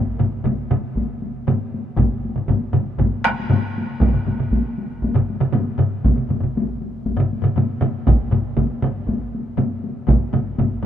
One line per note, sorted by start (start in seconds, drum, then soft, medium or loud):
0.07 taiko high soft
0.19 taiko low-mid medium
0.19 taiko mid medium
0.19 taiko high soft
0.34 taiko high soft
0.44 taiko medium
0.44 taiko low-mid medium
0.44 taiko mid medium
0.44 taiko high medium
0.59 taiko high soft
0.71 taiko low-mid medium
0.71 taiko mid medium
0.71 taiko high soft
0.86 taiko high soft
0.95 taiko medium
0.95 taiko high medium
1.10 taiko high soft
1.22 taiko high soft
1.47 taiko low-mid medium
1.47 taiko mid medium
1.47 taiko high medium
1.62 taiko high soft
1.74 taiko high soft
1.87 taiko high soft
1.96 taiko medium
1.96 taiko low-mid medium
1.96 taiko mid medium
1.96 taiko high medium
2.13 taiko high soft
2.25 taiko high soft
2.36 taiko low-mid medium
2.36 taiko mid medium
2.36 taiko high soft
2.48 taiko medium
2.48 taiko low-mid medium
2.48 taiko mid medium
2.48 taiko high medium
2.63 taiko high soft
2.73 taiko low-mid medium
2.73 taiko mid medium
2.73 taiko high soft
2.99 taiko medium
2.99 taiko low-mid medium
2.99 taiko mid medium
2.99 taiko high medium
3.13 taiko high soft
3.24 taiko rim medium
3.24 taiko high soft
3.40 taiko high soft
3.50 taiko low-mid medium
3.50 taiko mid medium
3.50 taiko high medium
3.66 taiko high soft
3.78 taiko high soft
3.90 taiko high soft
4.00 taiko loud
4.00 taiko low-mid medium
4.00 taiko mid medium
4.00 taiko high medium
4.13 taiko low-mid medium
4.13 taiko mid medium
4.13 taiko high soft
4.26 taiko low-mid medium
4.26 taiko mid medium
4.26 taiko high medium
4.39 taiko low-mid medium
4.39 taiko mid medium
4.39 taiko high soft
4.51 taiko medium
4.51 taiko high medium
4.66 taiko high soft
4.78 taiko high soft
4.92 taiko high soft
5.02 taiko medium
5.02 taiko high medium
5.14 taiko low-mid medium
5.14 taiko mid medium
5.30 taiko high soft
5.40 taiko low-mid medium
5.40 taiko mid medium
5.52 taiko low-mid medium
5.52 taiko mid medium
5.52 taiko high medium
5.68 taiko high soft
5.78 taiko low-mid medium
5.78 taiko mid medium
6.04 taiko medium
6.04 taiko low-mid medium
6.04 taiko mid medium
6.04 taiko high medium
6.16 taiko low-mid medium
6.16 taiko mid medium
6.16 taiko high soft
6.29 taiko low-mid medium
6.29 taiko mid medium
6.29 taiko high medium
6.41 taiko low-mid medium
6.41 taiko mid medium
6.41 taiko high soft
6.55 taiko medium
6.55 taiko high medium
6.70 taiko high soft
6.82 taiko high soft
6.94 taiko high soft
7.06 taiko medium
7.06 taiko high medium
7.17 taiko low-mid medium
7.17 taiko mid medium
7.33 taiko high soft
7.42 taiko low-mid medium
7.42 taiko mid medium
7.56 taiko low-mid medium
7.56 taiko mid medium
7.56 taiko high medium
7.70 taiko high soft
7.81 taiko low-mid medium
7.81 taiko mid medium
7.81 taiko high soft
7.95 taiko high soft
8.07 taiko loud
8.07 taiko low-mid medium
8.07 taiko mid medium
8.07 taiko high medium
8.20 taiko high soft
8.32 taiko low-mid medium
8.32 taiko mid medium
8.32 taiko high soft
8.45 taiko high soft
8.57 taiko medium
8.57 taiko low-mid medium
8.57 taiko mid medium
8.57 taiko high medium
8.70 taiko high soft
8.82 taiko low-mid medium
8.82 taiko mid medium
8.82 taiko high soft
8.96 taiko high soft
9.07 taiko medium
9.07 taiko high medium
9.21 taiko high soft
9.35 taiko high soft
9.57 taiko low-mid medium
9.57 taiko mid medium
9.57 taiko high medium
9.71 taiko high soft
9.84 taiko high soft
9.96 taiko high soft
10.07 taiko medium
10.07 taiko low-mid medium
10.07 taiko mid medium
10.07 taiko high medium
10.21 taiko high soft
10.33 taiko low-mid medium
10.33 taiko mid medium
10.33 taiko high soft
10.46 taiko high soft
10.58 taiko medium
10.58 taiko low-mid medium
10.58 taiko mid medium
10.58 taiko high medium
10.70 taiko high soft